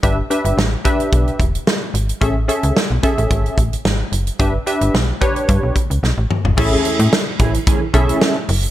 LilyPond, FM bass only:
\new Staff \with { instrumentName = "FM bass" } { \clef bass \time 4/4 \key a \major \tempo 4 = 110 g,,8 r16 g,,16 a,,8 r8 b,,8 e,,8 r8 gis,,8 | a,,8. cis,16 r16 b,,16 r16 a,,16 gis,,8 a,,8 gis,,8 fis,,8 | g,,8 r16 g,,16 b,,8 r8 g,16 b,,16 r16 cis,16 b,,16 a,,16 r16 g,,16 | a,,8 r16 a,16 r8 a,,8 r8 b,,8 r8 fis,,8 | }